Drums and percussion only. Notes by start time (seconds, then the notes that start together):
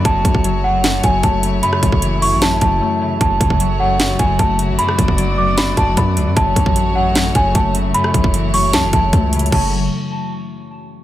0.05 kick, closed hi-hat
0.25 kick, closed hi-hat
0.35 kick
0.44 closed hi-hat
0.84 snare, clap, closed hi-hat
1.03 kick, closed hi-hat
1.23 kick, closed hi-hat
1.43 closed hi-hat
1.63 closed hi-hat
1.73 cross-stick
1.83 kick, closed hi-hat
1.92 kick
2.02 closed hi-hat
2.22 open hi-hat
2.42 snare, clap, closed hi-hat
2.61 kick, closed hi-hat
3.21 kick, closed hi-hat
3.41 kick, closed hi-hat
3.50 kick
3.60 closed hi-hat
4.00 snare, clap, closed hi-hat
4.19 kick, closed hi-hat
4.39 kick, closed hi-hat
4.59 closed hi-hat
4.79 closed hi-hat
4.89 cross-stick
4.98 kick, closed hi-hat
5.08 kick
5.18 closed hi-hat
5.58 snare, clap, closed hi-hat
5.77 kick, closed hi-hat
5.97 kick, closed hi-hat
6.17 closed hi-hat
6.37 kick, closed hi-hat
6.56 kick, closed hi-hat
6.66 kick
6.76 closed hi-hat
7.15 snare, clap, closed hi-hat
7.35 kick, closed hi-hat
7.55 kick, closed hi-hat
7.75 closed hi-hat
7.94 closed hi-hat
8.04 cross-stick
8.14 kick, closed hi-hat
8.24 kick
8.34 closed hi-hat
8.54 open hi-hat
8.73 snare, clap, closed hi-hat
8.93 kick, closed hi-hat
9.13 kick, closed hi-hat
9.33 closed hi-hat, open hi-hat
9.39 closed hi-hat
9.46 closed hi-hat
9.52 kick, crash